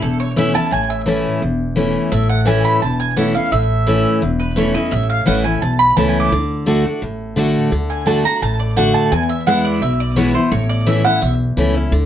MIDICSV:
0, 0, Header, 1, 4, 480
1, 0, Start_track
1, 0, Key_signature, 3, "major"
1, 0, Tempo, 349854
1, 995, Time_signature, 4, 2, 24, 8
1, 16542, End_track
2, 0, Start_track
2, 0, Title_t, "Mandolin"
2, 0, Program_c, 0, 25
2, 29, Note_on_c, 0, 69, 85
2, 266, Note_off_c, 0, 69, 0
2, 272, Note_on_c, 0, 73, 95
2, 505, Note_off_c, 0, 73, 0
2, 508, Note_on_c, 0, 76, 88
2, 747, Note_off_c, 0, 76, 0
2, 753, Note_on_c, 0, 81, 124
2, 985, Note_off_c, 0, 81, 0
2, 994, Note_on_c, 0, 80, 90
2, 1229, Note_off_c, 0, 80, 0
2, 1235, Note_on_c, 0, 76, 99
2, 1378, Note_off_c, 0, 76, 0
2, 2905, Note_on_c, 0, 76, 93
2, 3142, Note_off_c, 0, 76, 0
2, 3147, Note_on_c, 0, 78, 96
2, 3382, Note_off_c, 0, 78, 0
2, 3389, Note_on_c, 0, 80, 91
2, 3626, Note_off_c, 0, 80, 0
2, 3633, Note_on_c, 0, 83, 114
2, 3864, Note_off_c, 0, 83, 0
2, 3869, Note_on_c, 0, 81, 91
2, 4107, Note_off_c, 0, 81, 0
2, 4112, Note_on_c, 0, 80, 106
2, 4342, Note_off_c, 0, 80, 0
2, 4347, Note_on_c, 0, 78, 86
2, 4586, Note_off_c, 0, 78, 0
2, 4591, Note_on_c, 0, 77, 88
2, 4823, Note_off_c, 0, 77, 0
2, 4829, Note_on_c, 0, 76, 91
2, 5737, Note_off_c, 0, 76, 0
2, 6030, Note_on_c, 0, 71, 90
2, 6264, Note_off_c, 0, 71, 0
2, 6270, Note_on_c, 0, 73, 78
2, 6503, Note_off_c, 0, 73, 0
2, 6508, Note_on_c, 0, 75, 102
2, 6743, Note_off_c, 0, 75, 0
2, 6751, Note_on_c, 0, 76, 101
2, 6986, Note_off_c, 0, 76, 0
2, 6991, Note_on_c, 0, 77, 95
2, 7223, Note_off_c, 0, 77, 0
2, 7228, Note_on_c, 0, 78, 96
2, 7463, Note_off_c, 0, 78, 0
2, 7469, Note_on_c, 0, 80, 89
2, 7703, Note_off_c, 0, 80, 0
2, 7708, Note_on_c, 0, 81, 85
2, 7939, Note_off_c, 0, 81, 0
2, 7945, Note_on_c, 0, 83, 127
2, 8181, Note_off_c, 0, 83, 0
2, 8186, Note_on_c, 0, 81, 103
2, 8343, Note_off_c, 0, 81, 0
2, 8348, Note_on_c, 0, 80, 83
2, 8500, Note_off_c, 0, 80, 0
2, 8506, Note_on_c, 0, 86, 94
2, 9656, Note_off_c, 0, 86, 0
2, 10836, Note_on_c, 0, 80, 90
2, 11065, Note_off_c, 0, 80, 0
2, 11070, Note_on_c, 0, 81, 99
2, 11307, Note_off_c, 0, 81, 0
2, 11319, Note_on_c, 0, 82, 113
2, 11549, Note_off_c, 0, 82, 0
2, 11558, Note_on_c, 0, 81, 105
2, 11791, Note_off_c, 0, 81, 0
2, 11794, Note_on_c, 0, 74, 74
2, 12026, Note_off_c, 0, 74, 0
2, 12032, Note_on_c, 0, 78, 97
2, 12264, Note_off_c, 0, 78, 0
2, 12269, Note_on_c, 0, 81, 124
2, 12503, Note_off_c, 0, 81, 0
2, 12511, Note_on_c, 0, 80, 96
2, 12745, Note_off_c, 0, 80, 0
2, 12751, Note_on_c, 0, 76, 105
2, 12984, Note_off_c, 0, 76, 0
2, 12993, Note_on_c, 0, 78, 108
2, 13229, Note_off_c, 0, 78, 0
2, 13235, Note_on_c, 0, 74, 102
2, 13466, Note_off_c, 0, 74, 0
2, 13471, Note_on_c, 0, 76, 112
2, 13708, Note_off_c, 0, 76, 0
2, 13722, Note_on_c, 0, 74, 94
2, 13947, Note_off_c, 0, 74, 0
2, 13953, Note_on_c, 0, 73, 86
2, 14187, Note_off_c, 0, 73, 0
2, 14192, Note_on_c, 0, 72, 96
2, 14425, Note_off_c, 0, 72, 0
2, 14431, Note_on_c, 0, 73, 88
2, 14666, Note_off_c, 0, 73, 0
2, 14672, Note_on_c, 0, 74, 108
2, 14905, Note_off_c, 0, 74, 0
2, 14918, Note_on_c, 0, 76, 86
2, 15149, Note_off_c, 0, 76, 0
2, 15155, Note_on_c, 0, 78, 127
2, 15387, Note_off_c, 0, 78, 0
2, 15396, Note_on_c, 0, 76, 92
2, 15542, Note_off_c, 0, 76, 0
2, 16542, End_track
3, 0, Start_track
3, 0, Title_t, "Steel-string acoustic guitar"
3, 0, Program_c, 1, 25
3, 27, Note_on_c, 1, 40, 84
3, 498, Note_on_c, 1, 52, 102
3, 507, Note_on_c, 1, 57, 107
3, 521, Note_on_c, 1, 61, 104
3, 526, Note_on_c, 1, 64, 115
3, 719, Note_off_c, 1, 64, 0
3, 735, Note_on_c, 1, 64, 68
3, 739, Note_off_c, 1, 52, 0
3, 743, Note_off_c, 1, 57, 0
3, 747, Note_off_c, 1, 61, 0
3, 764, Note_on_c, 1, 61, 54
3, 943, Note_off_c, 1, 40, 0
3, 974, Note_off_c, 1, 64, 0
3, 977, Note_on_c, 1, 45, 88
3, 988, Note_off_c, 1, 61, 0
3, 1451, Note_on_c, 1, 52, 97
3, 1465, Note_on_c, 1, 57, 95
3, 1472, Note_on_c, 1, 61, 111
3, 1483, Note_on_c, 1, 64, 110
3, 1898, Note_off_c, 1, 45, 0
3, 1919, Note_off_c, 1, 52, 0
3, 1926, Note_off_c, 1, 57, 0
3, 1929, Note_off_c, 1, 61, 0
3, 1935, Note_off_c, 1, 64, 0
3, 1948, Note_on_c, 1, 40, 81
3, 2412, Note_on_c, 1, 52, 95
3, 2423, Note_on_c, 1, 57, 102
3, 2433, Note_on_c, 1, 61, 103
3, 2438, Note_on_c, 1, 64, 102
3, 2863, Note_off_c, 1, 40, 0
3, 2879, Note_off_c, 1, 52, 0
3, 2885, Note_off_c, 1, 57, 0
3, 2890, Note_off_c, 1, 61, 0
3, 2892, Note_off_c, 1, 64, 0
3, 2905, Note_on_c, 1, 45, 97
3, 3367, Note_on_c, 1, 52, 100
3, 3381, Note_on_c, 1, 57, 107
3, 3391, Note_on_c, 1, 61, 108
3, 3396, Note_on_c, 1, 64, 110
3, 3822, Note_off_c, 1, 45, 0
3, 3837, Note_off_c, 1, 52, 0
3, 3844, Note_off_c, 1, 57, 0
3, 3848, Note_off_c, 1, 61, 0
3, 3851, Note_off_c, 1, 64, 0
3, 3868, Note_on_c, 1, 40, 77
3, 4342, Note_on_c, 1, 52, 101
3, 4353, Note_on_c, 1, 57, 97
3, 4359, Note_on_c, 1, 61, 92
3, 4372, Note_on_c, 1, 64, 100
3, 4567, Note_off_c, 1, 64, 0
3, 4581, Note_off_c, 1, 52, 0
3, 4584, Note_on_c, 1, 64, 58
3, 4586, Note_off_c, 1, 57, 0
3, 4589, Note_off_c, 1, 61, 0
3, 4614, Note_on_c, 1, 61, 52
3, 4784, Note_off_c, 1, 40, 0
3, 4818, Note_off_c, 1, 64, 0
3, 4833, Note_off_c, 1, 61, 0
3, 4833, Note_on_c, 1, 45, 93
3, 5305, Note_on_c, 1, 52, 104
3, 5320, Note_on_c, 1, 57, 99
3, 5323, Note_on_c, 1, 61, 110
3, 5338, Note_on_c, 1, 64, 110
3, 5746, Note_off_c, 1, 45, 0
3, 5766, Note_off_c, 1, 52, 0
3, 5773, Note_off_c, 1, 57, 0
3, 5775, Note_off_c, 1, 61, 0
3, 5782, Note_off_c, 1, 64, 0
3, 5789, Note_on_c, 1, 40, 82
3, 6256, Note_on_c, 1, 52, 98
3, 6269, Note_on_c, 1, 57, 95
3, 6278, Note_on_c, 1, 61, 95
3, 6288, Note_on_c, 1, 64, 106
3, 6493, Note_off_c, 1, 64, 0
3, 6498, Note_off_c, 1, 52, 0
3, 6505, Note_off_c, 1, 57, 0
3, 6509, Note_off_c, 1, 61, 0
3, 6509, Note_on_c, 1, 64, 60
3, 6539, Note_on_c, 1, 61, 58
3, 6704, Note_off_c, 1, 40, 0
3, 6741, Note_off_c, 1, 64, 0
3, 6741, Note_on_c, 1, 45, 99
3, 6756, Note_off_c, 1, 61, 0
3, 7214, Note_on_c, 1, 52, 105
3, 7226, Note_on_c, 1, 57, 99
3, 7234, Note_on_c, 1, 61, 102
3, 7240, Note_on_c, 1, 64, 92
3, 7448, Note_off_c, 1, 64, 0
3, 7457, Note_off_c, 1, 52, 0
3, 7463, Note_off_c, 1, 57, 0
3, 7465, Note_on_c, 1, 64, 63
3, 7467, Note_off_c, 1, 61, 0
3, 7493, Note_on_c, 1, 61, 43
3, 7660, Note_off_c, 1, 45, 0
3, 7699, Note_off_c, 1, 64, 0
3, 7712, Note_on_c, 1, 40, 84
3, 7713, Note_off_c, 1, 61, 0
3, 8186, Note_on_c, 1, 52, 110
3, 8197, Note_on_c, 1, 57, 94
3, 8206, Note_on_c, 1, 61, 104
3, 8218, Note_on_c, 1, 64, 104
3, 8625, Note_off_c, 1, 40, 0
3, 8646, Note_off_c, 1, 52, 0
3, 8652, Note_off_c, 1, 57, 0
3, 8656, Note_off_c, 1, 61, 0
3, 8662, Note_off_c, 1, 64, 0
3, 8675, Note_on_c, 1, 50, 96
3, 9124, Note_off_c, 1, 50, 0
3, 9141, Note_on_c, 1, 50, 96
3, 9148, Note_on_c, 1, 57, 102
3, 9162, Note_on_c, 1, 62, 99
3, 9166, Note_on_c, 1, 66, 109
3, 9378, Note_off_c, 1, 66, 0
3, 9380, Note_off_c, 1, 50, 0
3, 9384, Note_off_c, 1, 57, 0
3, 9391, Note_off_c, 1, 62, 0
3, 9395, Note_on_c, 1, 66, 58
3, 9420, Note_on_c, 1, 62, 50
3, 9624, Note_off_c, 1, 66, 0
3, 9631, Note_on_c, 1, 45, 72
3, 9636, Note_off_c, 1, 62, 0
3, 10099, Note_on_c, 1, 50, 104
3, 10112, Note_on_c, 1, 57, 100
3, 10123, Note_on_c, 1, 62, 117
3, 10132, Note_on_c, 1, 66, 103
3, 10545, Note_off_c, 1, 45, 0
3, 10563, Note_off_c, 1, 50, 0
3, 10569, Note_off_c, 1, 57, 0
3, 10575, Note_off_c, 1, 62, 0
3, 10579, Note_off_c, 1, 66, 0
3, 10589, Note_on_c, 1, 50, 90
3, 11038, Note_off_c, 1, 50, 0
3, 11054, Note_on_c, 1, 50, 91
3, 11067, Note_on_c, 1, 57, 96
3, 11073, Note_on_c, 1, 62, 100
3, 11082, Note_on_c, 1, 66, 103
3, 11287, Note_off_c, 1, 66, 0
3, 11297, Note_off_c, 1, 50, 0
3, 11303, Note_off_c, 1, 57, 0
3, 11304, Note_on_c, 1, 66, 69
3, 11307, Note_off_c, 1, 62, 0
3, 11332, Note_on_c, 1, 62, 49
3, 11538, Note_off_c, 1, 66, 0
3, 11553, Note_off_c, 1, 62, 0
3, 11555, Note_on_c, 1, 45, 82
3, 12025, Note_on_c, 1, 50, 105
3, 12033, Note_on_c, 1, 57, 98
3, 12043, Note_on_c, 1, 62, 104
3, 12050, Note_on_c, 1, 66, 103
3, 12467, Note_off_c, 1, 45, 0
3, 12486, Note_off_c, 1, 50, 0
3, 12490, Note_off_c, 1, 57, 0
3, 12495, Note_off_c, 1, 62, 0
3, 12498, Note_off_c, 1, 66, 0
3, 12513, Note_on_c, 1, 40, 101
3, 12987, Note_on_c, 1, 52, 93
3, 12998, Note_on_c, 1, 56, 96
3, 13005, Note_on_c, 1, 59, 105
3, 13014, Note_on_c, 1, 64, 118
3, 13426, Note_off_c, 1, 40, 0
3, 13447, Note_off_c, 1, 52, 0
3, 13453, Note_off_c, 1, 56, 0
3, 13456, Note_off_c, 1, 59, 0
3, 13461, Note_off_c, 1, 64, 0
3, 13482, Note_on_c, 1, 47, 80
3, 13942, Note_on_c, 1, 52, 108
3, 13954, Note_on_c, 1, 56, 107
3, 13966, Note_on_c, 1, 59, 105
3, 13971, Note_on_c, 1, 64, 114
3, 14168, Note_off_c, 1, 64, 0
3, 14182, Note_off_c, 1, 52, 0
3, 14185, Note_on_c, 1, 64, 67
3, 14187, Note_off_c, 1, 56, 0
3, 14193, Note_off_c, 1, 59, 0
3, 14214, Note_on_c, 1, 59, 48
3, 14391, Note_off_c, 1, 47, 0
3, 14419, Note_off_c, 1, 64, 0
3, 14428, Note_on_c, 1, 45, 105
3, 14434, Note_off_c, 1, 59, 0
3, 14907, Note_on_c, 1, 52, 105
3, 14917, Note_on_c, 1, 57, 93
3, 14928, Note_on_c, 1, 61, 97
3, 14934, Note_on_c, 1, 64, 121
3, 15131, Note_off_c, 1, 64, 0
3, 15145, Note_off_c, 1, 52, 0
3, 15147, Note_on_c, 1, 64, 63
3, 15150, Note_off_c, 1, 57, 0
3, 15155, Note_off_c, 1, 61, 0
3, 15181, Note_on_c, 1, 61, 52
3, 15345, Note_off_c, 1, 45, 0
3, 15381, Note_off_c, 1, 64, 0
3, 15390, Note_on_c, 1, 40, 75
3, 15398, Note_off_c, 1, 61, 0
3, 15874, Note_on_c, 1, 52, 103
3, 15891, Note_on_c, 1, 57, 110
3, 15896, Note_on_c, 1, 61, 106
3, 15905, Note_on_c, 1, 64, 103
3, 16097, Note_off_c, 1, 64, 0
3, 16108, Note_off_c, 1, 52, 0
3, 16114, Note_on_c, 1, 64, 64
3, 16117, Note_off_c, 1, 57, 0
3, 16120, Note_off_c, 1, 61, 0
3, 16144, Note_on_c, 1, 61, 60
3, 16307, Note_off_c, 1, 40, 0
3, 16345, Note_off_c, 1, 64, 0
3, 16356, Note_on_c, 1, 50, 96
3, 16360, Note_off_c, 1, 61, 0
3, 16542, Note_off_c, 1, 50, 0
3, 16542, End_track
4, 0, Start_track
4, 0, Title_t, "Upright bass"
4, 0, Program_c, 2, 32
4, 33, Note_on_c, 2, 28, 80
4, 745, Note_off_c, 2, 28, 0
4, 994, Note_on_c, 2, 33, 93
4, 1706, Note_off_c, 2, 33, 0
4, 1949, Note_on_c, 2, 28, 74
4, 2663, Note_off_c, 2, 28, 0
4, 2905, Note_on_c, 2, 33, 89
4, 3620, Note_off_c, 2, 33, 0
4, 3875, Note_on_c, 2, 28, 78
4, 4586, Note_off_c, 2, 28, 0
4, 4831, Note_on_c, 2, 33, 94
4, 5544, Note_off_c, 2, 33, 0
4, 5800, Note_on_c, 2, 28, 78
4, 6510, Note_off_c, 2, 28, 0
4, 6760, Note_on_c, 2, 33, 106
4, 7114, Note_off_c, 2, 33, 0
4, 7243, Note_on_c, 2, 33, 81
4, 7647, Note_off_c, 2, 33, 0
4, 7715, Note_on_c, 2, 35, 87
4, 8123, Note_off_c, 2, 35, 0
4, 8187, Note_on_c, 2, 37, 84
4, 8598, Note_off_c, 2, 37, 0
4, 8670, Note_on_c, 2, 38, 97
4, 9384, Note_off_c, 2, 38, 0
4, 9635, Note_on_c, 2, 33, 79
4, 10347, Note_off_c, 2, 33, 0
4, 10591, Note_on_c, 2, 38, 98
4, 11304, Note_off_c, 2, 38, 0
4, 11554, Note_on_c, 2, 33, 83
4, 12266, Note_off_c, 2, 33, 0
4, 12514, Note_on_c, 2, 40, 101
4, 13226, Note_off_c, 2, 40, 0
4, 13471, Note_on_c, 2, 35, 88
4, 14185, Note_off_c, 2, 35, 0
4, 14429, Note_on_c, 2, 33, 100
4, 15144, Note_off_c, 2, 33, 0
4, 15401, Note_on_c, 2, 35, 84
4, 15808, Note_off_c, 2, 35, 0
4, 15875, Note_on_c, 2, 37, 89
4, 16285, Note_off_c, 2, 37, 0
4, 16351, Note_on_c, 2, 38, 100
4, 16542, Note_off_c, 2, 38, 0
4, 16542, End_track
0, 0, End_of_file